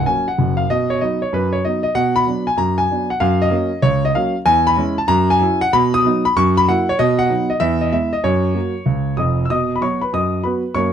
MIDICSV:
0, 0, Header, 1, 2, 480
1, 0, Start_track
1, 0, Key_signature, 6, "major"
1, 0, Tempo, 314795
1, 1044, Time_signature, 4, 2, 24, 8
1, 6808, Key_signature, 5, "major"
1, 16665, End_track
2, 0, Start_track
2, 0, Title_t, "Grand piano"
2, 0, Program_c, 0, 0
2, 96, Note_on_c, 0, 80, 86
2, 97, Note_on_c, 0, 61, 40
2, 101, Note_on_c, 0, 54, 40
2, 105, Note_on_c, 0, 58, 40
2, 358, Note_off_c, 0, 61, 0
2, 360, Note_off_c, 0, 54, 0
2, 363, Note_off_c, 0, 58, 0
2, 404, Note_off_c, 0, 80, 0
2, 425, Note_on_c, 0, 78, 74
2, 581, Note_on_c, 0, 42, 56
2, 586, Note_on_c, 0, 30, 54
2, 868, Note_on_c, 0, 77, 79
2, 892, Note_off_c, 0, 78, 0
2, 958, Note_off_c, 0, 42, 0
2, 961, Note_off_c, 0, 30, 0
2, 1039, Note_off_c, 0, 77, 0
2, 1065, Note_on_c, 0, 47, 70
2, 1069, Note_on_c, 0, 75, 95
2, 1296, Control_c, 0, 64, 127
2, 1371, Note_off_c, 0, 75, 0
2, 1374, Note_on_c, 0, 73, 84
2, 1465, Note_off_c, 0, 47, 0
2, 1532, Note_off_c, 0, 73, 0
2, 1543, Control_c, 0, 64, 0
2, 1543, Note_on_c, 0, 75, 79
2, 1551, Note_on_c, 0, 54, 45
2, 1552, Note_on_c, 0, 59, 43
2, 1556, Note_on_c, 0, 63, 47
2, 1808, Note_off_c, 0, 54, 0
2, 1809, Note_off_c, 0, 59, 0
2, 1812, Note_off_c, 0, 63, 0
2, 1848, Note_off_c, 0, 75, 0
2, 1861, Note_on_c, 0, 73, 74
2, 2016, Note_off_c, 0, 73, 0
2, 2022, Note_on_c, 0, 42, 66
2, 2039, Note_on_c, 0, 71, 85
2, 2326, Note_on_c, 0, 73, 77
2, 2337, Note_off_c, 0, 71, 0
2, 2423, Note_off_c, 0, 42, 0
2, 2489, Note_off_c, 0, 73, 0
2, 2504, Note_on_c, 0, 54, 41
2, 2511, Note_on_c, 0, 75, 80
2, 2519, Note_on_c, 0, 59, 36
2, 2525, Note_on_c, 0, 63, 38
2, 2763, Note_off_c, 0, 54, 0
2, 2770, Note_off_c, 0, 75, 0
2, 2774, Note_off_c, 0, 59, 0
2, 2778, Note_off_c, 0, 63, 0
2, 2793, Note_on_c, 0, 75, 84
2, 2962, Note_off_c, 0, 75, 0
2, 2971, Note_on_c, 0, 47, 83
2, 2974, Note_on_c, 0, 78, 103
2, 3222, Control_c, 0, 64, 127
2, 3284, Note_off_c, 0, 78, 0
2, 3288, Note_on_c, 0, 83, 104
2, 3377, Note_off_c, 0, 47, 0
2, 3458, Note_on_c, 0, 54, 49
2, 3464, Control_c, 0, 64, 0
2, 3481, Note_on_c, 0, 62, 46
2, 3482, Note_on_c, 0, 59, 45
2, 3719, Note_off_c, 0, 54, 0
2, 3736, Note_off_c, 0, 62, 0
2, 3737, Note_off_c, 0, 59, 0
2, 3765, Note_off_c, 0, 83, 0
2, 3766, Note_on_c, 0, 80, 85
2, 3919, Note_on_c, 0, 42, 62
2, 3929, Note_off_c, 0, 80, 0
2, 3931, Note_on_c, 0, 82, 93
2, 4237, Note_on_c, 0, 80, 88
2, 4243, Note_off_c, 0, 82, 0
2, 4331, Note_off_c, 0, 42, 0
2, 4441, Note_on_c, 0, 54, 39
2, 4441, Note_on_c, 0, 59, 40
2, 4447, Note_on_c, 0, 62, 40
2, 4696, Note_off_c, 0, 54, 0
2, 4696, Note_off_c, 0, 59, 0
2, 4700, Note_off_c, 0, 62, 0
2, 4720, Note_off_c, 0, 80, 0
2, 4732, Note_on_c, 0, 78, 78
2, 4883, Note_on_c, 0, 77, 101
2, 4885, Note_on_c, 0, 42, 86
2, 4893, Note_off_c, 0, 78, 0
2, 5148, Control_c, 0, 64, 127
2, 5200, Note_off_c, 0, 77, 0
2, 5210, Note_on_c, 0, 75, 98
2, 5295, Note_off_c, 0, 42, 0
2, 5340, Note_on_c, 0, 54, 52
2, 5351, Note_on_c, 0, 58, 54
2, 5368, Note_on_c, 0, 61, 49
2, 5382, Control_c, 0, 64, 0
2, 5612, Note_off_c, 0, 54, 0
2, 5620, Note_off_c, 0, 58, 0
2, 5632, Note_off_c, 0, 61, 0
2, 5831, Note_on_c, 0, 73, 102
2, 5832, Note_on_c, 0, 37, 73
2, 5852, Note_off_c, 0, 75, 0
2, 6154, Note_off_c, 0, 73, 0
2, 6173, Note_on_c, 0, 75, 91
2, 6247, Note_off_c, 0, 37, 0
2, 6327, Note_on_c, 0, 54, 44
2, 6330, Note_on_c, 0, 77, 92
2, 6333, Note_on_c, 0, 58, 42
2, 6334, Note_off_c, 0, 75, 0
2, 6339, Note_on_c, 0, 61, 46
2, 6592, Note_off_c, 0, 54, 0
2, 6596, Note_off_c, 0, 58, 0
2, 6600, Note_off_c, 0, 61, 0
2, 6643, Note_off_c, 0, 77, 0
2, 6792, Note_on_c, 0, 40, 85
2, 6794, Note_on_c, 0, 80, 123
2, 7062, Control_c, 0, 64, 127
2, 7116, Note_off_c, 0, 80, 0
2, 7117, Note_on_c, 0, 83, 108
2, 7207, Note_off_c, 0, 40, 0
2, 7276, Note_on_c, 0, 61, 56
2, 7277, Note_on_c, 0, 56, 50
2, 7278, Note_on_c, 0, 64, 55
2, 7308, Control_c, 0, 64, 0
2, 7543, Note_off_c, 0, 61, 0
2, 7544, Note_off_c, 0, 56, 0
2, 7545, Note_off_c, 0, 64, 0
2, 7595, Note_on_c, 0, 81, 87
2, 7600, Note_off_c, 0, 83, 0
2, 7742, Note_on_c, 0, 42, 95
2, 7745, Note_on_c, 0, 82, 127
2, 7765, Note_off_c, 0, 81, 0
2, 8032, Control_c, 0, 64, 127
2, 8071, Note_off_c, 0, 82, 0
2, 8087, Note_on_c, 0, 80, 103
2, 8162, Note_off_c, 0, 42, 0
2, 8243, Note_on_c, 0, 54, 46
2, 8251, Note_on_c, 0, 61, 44
2, 8259, Note_on_c, 0, 64, 60
2, 8261, Control_c, 0, 64, 0
2, 8509, Note_off_c, 0, 54, 0
2, 8514, Note_off_c, 0, 61, 0
2, 8520, Note_off_c, 0, 64, 0
2, 8559, Note_on_c, 0, 78, 105
2, 8565, Note_off_c, 0, 80, 0
2, 8727, Note_off_c, 0, 78, 0
2, 8737, Note_on_c, 0, 47, 101
2, 8739, Note_on_c, 0, 83, 117
2, 8975, Control_c, 0, 64, 127
2, 9048, Note_off_c, 0, 83, 0
2, 9058, Note_on_c, 0, 87, 118
2, 9141, Note_off_c, 0, 47, 0
2, 9223, Note_on_c, 0, 54, 65
2, 9231, Control_c, 0, 64, 0
2, 9237, Note_on_c, 0, 59, 62
2, 9245, Note_on_c, 0, 63, 61
2, 9483, Note_off_c, 0, 54, 0
2, 9493, Note_off_c, 0, 59, 0
2, 9499, Note_off_c, 0, 63, 0
2, 9530, Note_off_c, 0, 87, 0
2, 9533, Note_on_c, 0, 83, 96
2, 9693, Note_off_c, 0, 83, 0
2, 9707, Note_on_c, 0, 42, 95
2, 9708, Note_on_c, 0, 85, 114
2, 9934, Control_c, 0, 64, 127
2, 10012, Note_off_c, 0, 85, 0
2, 10024, Note_on_c, 0, 83, 110
2, 10107, Note_off_c, 0, 42, 0
2, 10179, Note_off_c, 0, 83, 0
2, 10191, Control_c, 0, 64, 0
2, 10192, Note_on_c, 0, 54, 43
2, 10192, Note_on_c, 0, 58, 47
2, 10194, Note_on_c, 0, 78, 95
2, 10204, Note_on_c, 0, 64, 61
2, 10449, Note_off_c, 0, 54, 0
2, 10449, Note_off_c, 0, 58, 0
2, 10458, Note_off_c, 0, 64, 0
2, 10495, Note_off_c, 0, 78, 0
2, 10510, Note_on_c, 0, 73, 96
2, 10658, Note_on_c, 0, 75, 109
2, 10659, Note_on_c, 0, 47, 94
2, 10661, Note_off_c, 0, 73, 0
2, 10891, Control_c, 0, 64, 127
2, 10958, Note_on_c, 0, 78, 99
2, 10967, Note_off_c, 0, 75, 0
2, 11062, Note_off_c, 0, 47, 0
2, 11126, Note_on_c, 0, 54, 56
2, 11126, Note_on_c, 0, 59, 59
2, 11139, Note_on_c, 0, 63, 51
2, 11151, Control_c, 0, 64, 0
2, 11390, Note_off_c, 0, 54, 0
2, 11390, Note_off_c, 0, 59, 0
2, 11399, Note_off_c, 0, 63, 0
2, 11432, Note_on_c, 0, 75, 82
2, 11439, Note_off_c, 0, 78, 0
2, 11587, Note_on_c, 0, 76, 106
2, 11591, Note_on_c, 0, 40, 88
2, 11602, Note_off_c, 0, 75, 0
2, 11871, Control_c, 0, 64, 127
2, 11911, Note_off_c, 0, 76, 0
2, 11912, Note_on_c, 0, 75, 78
2, 12005, Note_off_c, 0, 40, 0
2, 12082, Note_off_c, 0, 75, 0
2, 12085, Note_on_c, 0, 56, 38
2, 12086, Note_on_c, 0, 76, 85
2, 12088, Note_on_c, 0, 59, 42
2, 12090, Note_on_c, 0, 64, 41
2, 12098, Control_c, 0, 64, 0
2, 12349, Note_off_c, 0, 56, 0
2, 12351, Note_off_c, 0, 59, 0
2, 12352, Note_off_c, 0, 64, 0
2, 12393, Note_on_c, 0, 75, 86
2, 12400, Note_off_c, 0, 76, 0
2, 12560, Note_on_c, 0, 42, 81
2, 12562, Note_off_c, 0, 75, 0
2, 12563, Note_on_c, 0, 73, 91
2, 12820, Control_c, 0, 64, 127
2, 12970, Note_off_c, 0, 42, 0
2, 13029, Note_on_c, 0, 58, 43
2, 13031, Note_on_c, 0, 54, 44
2, 13034, Note_on_c, 0, 66, 46
2, 13063, Control_c, 0, 64, 0
2, 13297, Note_off_c, 0, 58, 0
2, 13299, Note_off_c, 0, 54, 0
2, 13301, Note_off_c, 0, 66, 0
2, 13506, Note_on_c, 0, 37, 56
2, 13922, Note_off_c, 0, 37, 0
2, 13983, Note_on_c, 0, 87, 70
2, 13991, Note_on_c, 0, 29, 54
2, 13995, Note_on_c, 0, 41, 57
2, 14003, Note_off_c, 0, 73, 0
2, 14014, Note_on_c, 0, 75, 55
2, 14379, Note_off_c, 0, 75, 0
2, 14380, Note_off_c, 0, 29, 0
2, 14383, Note_off_c, 0, 41, 0
2, 14391, Note_off_c, 0, 87, 0
2, 14415, Note_on_c, 0, 88, 65
2, 14488, Note_on_c, 0, 47, 65
2, 14489, Note_on_c, 0, 87, 88
2, 14491, Note_off_c, 0, 88, 0
2, 14498, Note_on_c, 0, 75, 68
2, 14739, Control_c, 0, 64, 127
2, 14861, Note_off_c, 0, 75, 0
2, 14876, Note_on_c, 0, 83, 68
2, 14884, Note_off_c, 0, 87, 0
2, 14895, Note_off_c, 0, 47, 0
2, 14955, Note_on_c, 0, 54, 42
2, 14962, Note_off_c, 0, 83, 0
2, 14965, Note_on_c, 0, 66, 46
2, 14971, Note_on_c, 0, 59, 38
2, 14973, Note_on_c, 0, 85, 80
2, 14982, Control_c, 0, 64, 0
2, 14985, Note_on_c, 0, 73, 63
2, 15222, Note_off_c, 0, 54, 0
2, 15229, Note_off_c, 0, 66, 0
2, 15234, Note_off_c, 0, 59, 0
2, 15268, Note_off_c, 0, 73, 0
2, 15270, Note_on_c, 0, 83, 70
2, 15283, Note_off_c, 0, 85, 0
2, 15284, Note_on_c, 0, 71, 53
2, 15436, Note_off_c, 0, 71, 0
2, 15440, Note_off_c, 0, 83, 0
2, 15446, Note_on_c, 0, 42, 58
2, 15459, Note_on_c, 0, 87, 87
2, 15467, Note_on_c, 0, 75, 61
2, 15854, Note_off_c, 0, 42, 0
2, 15903, Note_off_c, 0, 75, 0
2, 15906, Note_on_c, 0, 54, 34
2, 15911, Note_on_c, 0, 83, 61
2, 15923, Note_on_c, 0, 66, 42
2, 15929, Note_on_c, 0, 59, 39
2, 15932, Note_off_c, 0, 87, 0
2, 15935, Note_on_c, 0, 71, 54
2, 16176, Note_off_c, 0, 54, 0
2, 16188, Note_off_c, 0, 66, 0
2, 16192, Note_off_c, 0, 59, 0
2, 16377, Note_off_c, 0, 71, 0
2, 16383, Note_on_c, 0, 42, 62
2, 16384, Note_on_c, 0, 85, 87
2, 16399, Note_off_c, 0, 83, 0
2, 16401, Note_on_c, 0, 73, 70
2, 16423, Note_on_c, 0, 58, 65
2, 16662, Control_c, 0, 64, 127
2, 16665, Note_off_c, 0, 42, 0
2, 16665, Note_off_c, 0, 58, 0
2, 16665, Note_off_c, 0, 73, 0
2, 16665, Note_off_c, 0, 85, 0
2, 16665, End_track
0, 0, End_of_file